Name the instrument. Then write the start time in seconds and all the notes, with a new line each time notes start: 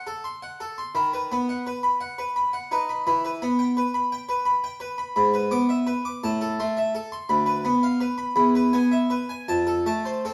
harpsichord
0.07 A4
0.24 C6
0.43 F#5
0.60 A4
0.78 C6
0.95 D#3 B5
1.13 B4
1.32 B3 B5
1.49 F#5
1.67 B4
1.83 B5
2.01 F#5
2.18 B4
2.36 B5
2.53 F#5
2.71 D#4 B4
2.89 B5
3.07 E3 B5
3.25 B4
3.42 B3 B5
3.59 G5
3.77 B4
3.94 B5
4.12 G5
4.29 B4
4.45 B5
4.64 G5
4.80 B4
4.98 B5
5.16 G#2 B5
5.34 B4
5.51 B3 D6
5.69 E5
5.87 B4
6.05 D6
6.24 A2 A5
6.41 A4
6.60 A3 C6
6.77 E5
6.95 A4
7.12 C6
7.29 D2 B5
7.46 B4
7.65 B3 B5
7.83 F5
8.00 B4
8.18 B5
8.36 E2 B5
8.55 B4
8.73 B3 G#5
8.92 E5
9.10 B4
9.29 G#5
9.48 F2 A5
9.67 A4
9.86 A3 A5
10.05 C5
10.25 C4 A4